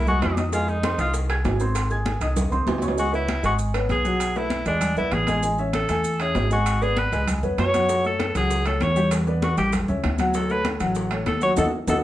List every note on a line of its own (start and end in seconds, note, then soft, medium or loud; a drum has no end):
0.00 0.19 C2 medium
0.07 0.32 G#3 medium
0.07 0.36 F#4 loud
0.07 0.32 G#4 medium
0.07 0.32 G#5 medium
0.07 high bongo soft
0.07 high conga soft
0.07 low conga medium
0.07 maracas soft
0.22 0.93 F2 medium
0.22 high bongo soft
0.22 low bongo medium
0.22 high conga medium
0.22 high timbale medium
0.22 low timbale medium
0.22 maracas soft
0.37 0.50 D#4 medium
0.37 0.50 D#5 medium
0.37 0.50 D#6 medium
0.37 high conga medium
0.37 high timbale medium
0.37 maracas medium
0.53 0.78 G#3 medium
0.53 0.71 F4 medium
0.53 0.78 G#4 medium
0.53 0.78 G#5 medium
0.53 high bongo medium
0.53 high conga soft
0.53 maracas medium
0.68 0.99 D#4 loud
0.68 high bongo soft
0.68 high conga soft
0.68 maracas soft
0.83 0.96 C4 medium
0.83 0.96 C5 medium
0.83 0.97 C6 medium
0.83 high bongo medium
0.83 high conga loud
0.83 high timbale loud
0.83 maracas soft
0.98 1.41 C2 medium
0.98 1.24 D#4 medium
0.98 1.14 F4 loud
0.98 1.24 D#5 medium
0.98 1.24 D#6 medium
0.98 high bongo soft
0.98 high conga soft
0.98 high timbale medium
0.98 maracas medium
1.14 high bongo medium
1.14 high conga soft
1.14 maracas medium
1.29 1.55 G#4 medium
1.29 1.55 G#5 medium
1.29 1.55 G#6 medium
1.29 high bongo soft
1.29 high conga soft
1.29 high timbale loud
1.29 maracas soft
1.44 2.16 G#1 medium
1.44 high bongo soft
1.44 low bongo medium
1.44 high conga medium
1.44 high timbale medium
1.44 low timbale medium
1.44 maracas soft
1.60 1.85 C4 medium
1.60 1.85 C5 medium
1.60 1.86 C6 medium
1.60 high conga soft
1.60 maracas medium
1.75 high bongo medium
1.75 high conga soft
1.75 high timbale medium
1.75 maracas loud
1.90 2.16 G#4 medium
1.90 2.16 G#5 medium
1.90 2.16 G#6 medium
1.90 high bongo soft
1.90 high conga soft
1.90 maracas soft
2.05 high bongo medium
2.05 high conga loud
2.05 high timbale medium
2.05 maracas soft
2.20 2.49 C2 medium
2.20 2.46 D#4 medium
2.20 2.47 D#5 medium
2.20 2.47 D#6 medium
2.20 high bongo soft
2.20 high conga soft
2.20 high timbale medium
2.20 maracas medium
2.36 high bongo medium
2.36 high conga soft
2.36 low conga medium
2.36 high timbale medium
2.36 maracas medium
2.51 2.66 C2 medium
2.51 2.77 C4 medium
2.51 2.77 C5 medium
2.51 2.77 C6 medium
2.51 high bongo soft
2.51 high conga soft
2.51 maracas soft
2.66 3.38 C#2 medium
2.66 high bongo soft
2.66 low bongo medium
2.66 high conga medium
2.66 low timbale medium
2.66 maracas soft
2.78 2.95 C#4 medium
2.78 high conga medium
2.78 low timbale medium
2.78 maracas medium
2.82 2.95 C#5 medium
2.82 2.95 C#6 medium
2.88 low timbale medium
2.97 3.10 G#3 medium
2.97 3.13 F#4 loud
2.97 3.10 G#4 medium
2.97 3.11 G#5 medium
2.97 high conga soft
2.97 maracas medium
3.12 3.38 B3 medium
3.12 3.43 E4 medium
3.12 3.38 B4 medium
3.12 3.38 C#5 medium
3.12 high conga soft
3.12 maracas soft
3.28 high conga medium
3.28 high timbale medium
3.28 maracas soft
3.43 3.86 G#1 medium
3.43 3.68 G#3 medium
3.43 3.54 F#4 loud
3.43 3.69 G#4 medium
3.43 3.69 G#5 medium
3.43 high conga soft
3.43 high timbale medium
3.43 maracas medium
3.59 high conga soft
3.59 maracas medium
3.74 3.99 B3 medium
3.74 3.99 B4 medium
3.74 4.00 C#5 medium
3.74 high conga soft
3.74 high timbale medium
3.74 maracas soft
3.89 4.61 B1 medium
3.89 4.39 G#4 loud
3.89 high conga medium
3.89 high timbale medium
3.89 maracas soft
4.05 4.30 F#3 medium
4.05 4.30 F#4 medium
4.05 4.30 F#5 medium
4.05 high conga soft
4.05 maracas medium
4.20 high conga soft
4.20 high timbale medium
4.20 maracas medium
4.35 4.61 A3 medium
4.35 4.67 E4 medium
4.35 4.61 A4 medium
4.35 4.61 B4 medium
4.35 high conga soft
4.35 maracas soft
4.50 high conga medium
4.50 high timbale medium
4.50 maracas soft
4.66 4.95 E2 medium
4.66 4.91 G#3 medium
4.66 4.96 D4 medium
4.66 4.92 G#4 medium
4.66 4.92 G#5 medium
4.66 high conga soft
4.66 high timbale medium
4.66 maracas medium
4.81 high conga soft
4.81 low conga medium
4.81 high timbale medium
4.81 maracas medium
4.97 5.11 B1 medium
4.97 5.22 B3 medium
4.97 5.15 E4 loud
4.97 5.22 B4 medium
4.97 5.23 D5 medium
4.97 high conga soft
4.97 low conga medium
4.97 maracas soft
5.11 5.84 A1 medium
5.11 5.44 G#4 medium
5.11 high conga medium
5.11 high timbale medium
5.11 maracas soft
5.27 5.40 G#3 medium
5.27 5.41 G#4 medium
5.27 5.41 G#5 medium
5.27 high conga medium
5.27 high timbale medium
5.27 maracas medium
5.43 5.56 G#3 medium
5.43 5.56 G#4 medium
5.43 5.56 G#5 medium
5.43 high conga soft
5.43 maracas medium
5.58 5.84 C#4 medium
5.58 5.84 C#5 medium
5.58 5.84 E5 medium
5.58 high conga soft
5.58 maracas soft
5.73 6.23 A4 loud
5.73 high conga medium
5.73 high timbale medium
5.73 maracas soft
5.89 6.32 E2 medium
5.89 6.15 A3 medium
5.89 6.15 A4 medium
5.89 6.15 G#5 medium
5.89 high conga soft
5.89 high timbale medium
5.89 maracas medium
6.04 high conga soft
6.04 maracas medium
6.20 6.45 C#4 medium
6.20 6.52 G#4 loud
6.20 6.45 C#5 medium
6.20 6.46 E5 medium
6.20 high conga soft
6.20 high timbale medium
6.20 maracas soft
6.35 7.06 G#1 medium
6.35 high conga medium
6.35 high timbale medium
6.35 low timbale medium
6.35 maracas soft
6.50 6.76 G#3 medium
6.50 6.84 F#4 medium
6.50 6.76 G#4 medium
6.50 6.76 G#5 medium
6.50 high conga soft
6.50 maracas medium
6.66 high conga soft
6.66 high timbale loud
6.66 maracas medium
6.82 7.07 B3 medium
6.82 7.00 G#4 loud
6.82 7.07 B4 medium
6.82 7.07 D5 medium
6.82 high conga soft
6.82 maracas soft
6.97 7.28 B4 medium
6.97 high conga medium
6.97 high timbale medium
6.97 maracas soft
7.12 7.41 C#2 medium
7.12 7.37 G#3 medium
7.12 7.37 G#4 medium
7.12 7.38 G#5 medium
7.12 high conga soft
7.12 high timbale medium
7.12 maracas medium
7.27 high conga soft
7.27 low conga medium
7.27 high timbale medium
7.27 maracas medium
7.43 7.57 F2 medium
7.43 7.68 B3 medium
7.43 7.68 B4 medium
7.43 7.69 C#5 medium
7.43 high conga soft
7.43 low conga medium
7.43 maracas soft
7.58 8.29 F#2 medium
7.58 8.02 C#5 loud
7.58 high conga medium
7.58 high timbale loud
7.58 low timbale medium
7.58 maracas soft
7.74 7.87 F#3 medium
7.74 7.87 F#4 medium
7.74 7.87 F#5 medium
7.74 high conga medium
7.74 high timbale medium
7.74 maracas medium
7.89 8.02 F#3 medium
7.89 8.02 F#4 medium
7.89 8.02 F#5 medium
7.89 high bongo medium
7.89 high conga soft
7.89 maracas medium
8.04 8.30 A3 medium
8.04 8.30 A4 medium
8.04 8.34 A4 medium
8.04 8.30 C#5 medium
8.04 high bongo soft
8.04 high conga soft
8.04 maracas soft
8.19 high bongo medium
8.19 high conga loud
8.19 high timbale medium
8.19 maracas soft
8.35 8.78 C#2 medium
8.35 8.60 F#3 medium
8.35 8.61 F#4 medium
8.35 8.65 G#4 loud
8.35 8.61 F#5 medium
8.35 high bongo soft
8.35 high conga soft
8.35 high timbale medium
8.35 maracas medium
8.50 high bongo medium
8.50 high conga soft
8.50 maracas medium
8.66 8.91 A3 medium
8.66 8.91 A4 medium
8.66 8.84 A4 loud
8.66 8.91 C#5 medium
8.66 high bongo soft
8.66 high conga soft
8.66 high timbale medium
8.66 maracas soft
8.81 9.52 E2 loud
8.81 9.12 C#5 loud
8.81 high bongo soft
8.81 low bongo medium
8.81 high conga medium
8.81 high timbale medium
8.81 maracas soft
8.96 9.21 G3 medium
8.96 9.22 G4 loud
8.96 9.22 G5 medium
8.96 high conga soft
8.96 maracas medium
9.11 high bongo medium
9.11 high conga soft
9.11 high timbale medium
9.11 maracas medium
9.27 9.52 B3 medium
9.27 9.52 B4 medium
9.27 9.52 D5 medium
9.27 high bongo soft
9.27 high conga soft
9.27 maracas soft
9.42 9.57 F#4 medium
9.42 high bongo medium
9.42 high conga loud
9.42 high timbale medium
9.42 maracas soft
9.57 9.86 A1 medium
9.57 9.83 G3 medium
9.57 9.83 G4 medium
9.57 9.72 G4 loud
9.57 9.83 G5 medium
9.57 high conga soft
9.57 high timbale medium
9.57 maracas medium
9.72 high bongo medium
9.72 high conga soft
9.72 low conga medium
9.72 high timbale medium
9.72 maracas medium
9.88 10.03 C#2 medium
9.88 10.13 C#4 medium
9.88 10.14 C#5 medium
9.88 10.14 E5 medium
9.88 high bongo soft
9.88 high conga soft
9.88 low conga medium
9.88 maracas soft
10.04 10.75 D2 medium
10.04 high bongo soft
10.04 low bongo medium
10.04 high conga medium
10.04 high timbale loud
10.04 maracas soft
10.18 10.32 F#3 medium
10.18 10.32 F#4 loud
10.18 10.32 F#5 medium
10.18 high conga medium
10.18 high timbale medium
10.18 maracas medium
10.34 10.47 F#3 medium
10.34 10.47 F#4 medium
10.34 10.52 A4 loud
10.34 10.47 F#5 medium
10.34 high bongo medium
10.34 high conga soft
10.34 maracas medium
10.49 10.75 A3 medium
10.49 10.75 A4 medium
10.49 10.66 B4 loud
10.49 10.76 C#5 medium
10.49 high bongo soft
10.49 high conga soft
10.49 maracas soft
10.65 high bongo medium
10.65 high conga loud
10.65 high timbale medium
10.65 maracas soft
10.80 11.23 A1 loud
10.80 11.06 F#3 medium
10.80 11.06 F#4 medium
10.80 11.06 F#5 medium
10.80 high bongo soft
10.80 high timbale medium
10.80 maracas medium
10.95 high bongo medium
10.95 high conga soft
10.95 maracas medium
11.11 11.36 A3 medium
11.11 11.36 A4 medium
11.11 11.37 C#5 medium
11.11 high bongo soft
11.11 high conga soft
11.11 high timbale medium
11.11 maracas soft
11.26 11.55 D#2 medium
11.26 11.41 A4 medium
11.26 high bongo soft
11.26 low bongo medium
11.26 high conga medium
11.26 high timbale medium
11.26 maracas soft
11.41 11.54 F#3 medium
11.41 11.54 F#4 medium
11.41 11.52 C#5 loud
11.41 11.55 F#5 medium
11.41 high conga soft
11.41 maracas medium
11.56 11.69 D#2 loud
11.56 11.67 D#4 loud
11.56 11.67 F#4 loud
11.56 11.67 A4 loud
11.56 11.65 A4 medium
11.56 low bongo loud
11.56 high conga loud
11.56 high timbale loud
11.56 maracas loud
11.87 11.99 D#2 loud
11.87 11.98 D#4 loud
11.87 11.98 F#4 loud
11.87 11.98 A4 loud
11.87 11.96 A4 medium
11.87 low bongo loud
11.87 high conga loud
11.87 high timbale loud
11.87 maracas loud